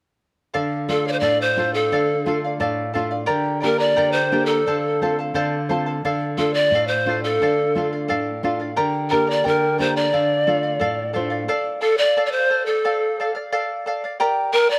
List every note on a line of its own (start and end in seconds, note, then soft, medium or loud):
0.54 1.22 D3 medium
0.54 0.87 A4 medium
0.54 0.88 D5 medium
0.54 0.89 F5 medium
0.88 1.44 A3 soft
0.88 1.44 D4 soft
0.88 1.44 F4 soft
0.88 1.06 A4 medium
0.88 1.05 D5 medium
0.88 1.04 F5 soft
1.05 1.22 D5 soft
1.05 1.14 D5 medium
1.05 1.22 F5 soft
1.12 1.21 C5 medium
1.20 1.89 A2 medium
1.20 1.57 A4 medium
1.20 1.40 D5 medium
1.20 1.57 D5 medium
1.20 1.58 F5 medium
1.41 1.73 C5 medium
1.57 2.12 A3 soft
1.57 2.13 D4 soft
1.57 2.12 F4 soft
1.57 1.75 A4 soft
1.57 1.75 D5 soft
1.57 1.75 F5 soft
1.74 2.39 A4 medium
1.74 1.91 D5 soft
1.74 1.93 F5 soft
1.92 2.59 D3 medium
1.92 2.26 A4 medium
1.92 2.26 D5 medium
1.92 2.27 F5 medium
2.26 2.81 A3 soft
2.26 2.81 D4 soft
2.26 2.81 F4 soft
2.26 2.44 A4 medium
2.26 2.44 D5 medium
2.26 2.43 F5 medium
2.44 2.59 D5 soft
2.44 2.60 F5 soft
2.60 3.27 A2 medium
2.60 2.92 A4 medium
2.60 2.93 D5 medium
2.60 2.94 F5 medium
2.94 3.23 A3 soft
2.94 3.23 D4 soft
2.94 3.23 F4 soft
2.94 3.12 A4 medium
2.94 3.10 D5 medium
2.94 3.10 F5 medium
3.11 3.26 D5 soft
3.11 3.26 F5 medium
3.26 3.96 D3 medium
3.26 3.62 G4 medium
3.26 3.60 A#4 medium
3.26 3.60 D5 medium
3.26 3.59 G5 medium
3.26 3.62 A#5 medium
3.60 4.18 A#3 soft
3.60 4.18 D4 soft
3.60 4.18 G4 soft
3.60 3.78 A#4 soft
3.60 3.78 D5 medium
3.60 3.79 G5 soft
3.60 3.77 A#5 medium
3.65 3.81 A#4 medium
3.78 3.96 A#4 soft
3.78 3.96 D5 soft
3.78 4.14 D5 medium
3.78 3.95 A#5 soft
3.96 4.64 D3 medium
3.96 4.31 G4 medium
3.96 4.31 A#4 medium
3.96 4.31 D5 medium
3.96 4.31 G5 medium
3.96 4.32 A#5 medium
4.12 4.47 C5 medium
4.32 4.59 A#3 soft
4.32 4.60 D4 soft
4.32 4.60 G4 medium
4.32 4.49 A#4 soft
4.32 4.49 D5 medium
4.32 4.49 G5 soft
4.32 4.48 A#5 medium
4.46 5.16 A4 medium
4.46 4.65 D5 soft
4.46 4.66 A#5 soft
4.50 4.67 A#4 soft
4.67 5.33 D3 medium
4.67 5.01 A4 medium
4.67 5.01 C5 medium
4.67 5.01 D5 medium
4.67 5.01 F5 medium
4.67 5.01 A5 medium
5.01 5.56 A3 soft
5.01 5.56 C4 soft
5.01 5.57 F4 soft
5.01 5.19 A4 medium
5.01 5.18 C5 soft
5.01 5.19 F5 medium
5.01 5.18 A5 medium
5.19 5.34 A4 soft
5.19 5.34 F5 soft
5.19 5.35 A5 soft
5.34 6.01 D3 medium
5.34 5.69 A4 medium
5.34 5.68 C5 medium
5.34 5.69 D5 medium
5.34 5.68 F5 medium
5.34 5.70 A5 medium
5.69 5.97 A3 soft
5.69 5.97 C4 soft
5.69 5.97 F4 soft
5.69 5.87 A4 medium
5.69 5.86 C5 medium
5.69 5.85 F5 medium
5.69 5.85 A5 medium
5.86 6.04 A4 soft
5.86 6.04 F5 soft
5.86 6.03 A5 soft
6.05 6.70 D3 medium
6.05 6.38 A4 medium
6.05 6.38 D5 medium
6.05 6.39 F5 medium
6.37 6.92 A3 soft
6.37 6.93 D4 soft
6.37 6.92 F4 soft
6.37 6.55 A4 medium
6.37 6.56 D5 soft
6.37 6.56 F5 soft
6.54 6.87 D5 medium
6.54 6.73 F5 soft
6.58 6.74 D5 soft
6.71 7.38 A2 medium
6.71 7.07 A4 medium
6.71 7.07 D5 medium
6.71 7.08 F5 medium
6.88 7.20 C5 medium
7.06 7.61 A3 soft
7.06 7.61 D4 soft
7.06 7.61 F4 soft
7.06 7.24 A4 soft
7.06 7.24 D5 soft
7.06 7.23 F5 medium
7.24 7.88 A4 medium
7.24 7.42 D5 soft
7.24 7.41 F5 soft
7.42 8.07 D3 medium
7.42 7.75 A4 medium
7.42 7.76 D5 medium
7.42 7.76 F5 medium
7.75 8.30 A3 soft
7.75 8.30 D4 soft
7.75 8.30 F4 soft
7.75 7.93 A4 soft
7.75 7.93 D5 soft
7.75 7.91 F5 medium
7.93 8.08 D5 soft
7.93 8.09 F5 soft
8.08 8.76 A2 medium
8.08 8.43 A4 medium
8.08 8.43 D5 medium
8.08 8.43 F5 medium
8.43 8.70 A3 soft
8.43 8.71 D4 soft
8.43 8.71 F4 soft
8.43 8.60 A4 medium
8.43 8.60 D5 soft
8.43 8.58 F5 medium
8.60 8.76 D5 soft
8.60 8.76 F5 soft
8.76 9.43 D3 medium
8.76 9.11 G4 medium
8.76 9.09 A#4 medium
8.76 9.10 D5 medium
8.76 9.09 G5 medium
8.76 9.10 A#5 medium
9.10 9.66 A#3 soft
9.10 9.66 D4 soft
9.10 9.67 G4 soft
9.10 9.32 A#4 medium
9.10 9.27 A#4 medium
9.10 9.27 D5 soft
9.10 9.27 G5 medium
9.10 9.26 A#5 medium
9.27 9.43 A#4 soft
9.27 9.44 D5 soft
9.27 9.46 D5 medium
9.27 9.44 A#5 soft
9.44 10.12 D3 medium
9.44 9.78 G4 medium
9.44 9.78 A#4 medium
9.44 9.81 A#4 medium
9.44 9.78 D5 medium
9.44 9.77 G5 medium
9.44 9.79 A#5 medium
9.78 10.06 A#3 soft
9.78 10.06 D4 soft
9.78 10.07 G4 soft
9.78 9.96 A#4 soft
9.78 9.96 C5 medium
9.78 9.95 D5 soft
9.78 9.96 G5 medium
9.78 9.95 A#5 medium
9.96 10.12 A#4 soft
9.96 10.12 D5 soft
9.96 11.11 D5 medium
9.96 10.13 A#5 soft
10.12 10.79 D3 medium
10.12 10.46 A4 medium
10.12 10.46 D5 medium
10.12 10.47 F5 medium
10.47 11.01 A3 soft
10.47 11.02 D4 soft
10.47 11.02 F4 soft
10.47 10.64 A4 soft
10.47 10.63 D5 soft
10.47 10.62 F5 medium
10.63 10.80 D5 soft
10.63 10.80 F5 soft
10.80 11.47 A2 medium
10.80 11.12 A4 medium
10.80 11.13 D5 medium
10.80 11.13 F5 medium
11.13 11.42 A3 soft
11.13 11.43 D4 soft
11.13 11.43 F4 soft
11.13 11.31 A4 medium
11.13 11.47 C5 medium
11.13 11.30 D5 medium
11.13 11.29 F5 medium
11.30 11.48 D5 soft
11.30 11.48 F5 soft
11.48 11.80 A4 medium
11.48 11.81 D5 medium
11.48 11.81 F5 medium
11.81 11.99 A4 medium
11.81 11.99 D5 medium
11.81 11.98 F5 medium
11.98 12.25 D5 medium
11.98 12.16 D5 soft
11.98 12.16 F5 soft
12.17 12.48 A4 medium
12.17 12.49 D5 medium
12.17 12.50 F5 medium
12.26 12.33 D5 medium
12.31 12.66 C5 medium
12.50 12.67 A4 medium
12.50 12.68 D5 medium
12.50 12.67 F5 medium
12.66 13.31 A4 medium
12.66 12.84 D5 soft
12.66 12.84 F5 soft
12.84 13.19 A4 medium
12.84 13.19 D5 medium
12.84 13.19 F5 medium
13.20 13.36 A4 medium
13.20 13.35 D5 medium
13.20 13.34 F5 medium
13.35 13.51 D5 soft
13.35 13.51 F5 soft
13.52 13.85 A4 medium
13.52 13.86 D5 medium
13.52 13.86 F5 medium
13.86 14.03 A4 medium
13.86 14.04 D5 medium
13.86 14.03 F5 medium
14.04 14.19 D5 soft
14.04 14.19 F5 medium
14.20 14.54 G4 medium
14.20 14.52 A#4 medium
14.20 14.52 D5 medium
14.20 14.52 G5 medium
14.20 14.53 A#5 medium
14.53 14.70 A#4 medium
14.53 14.69 D5 medium
14.53 14.71 G5 medium
14.53 14.68 A#5 medium
14.69 14.79 A#4 soft
14.69 14.79 D5 soft
14.69 14.79 D5 medium
14.69 14.79 A#5 medium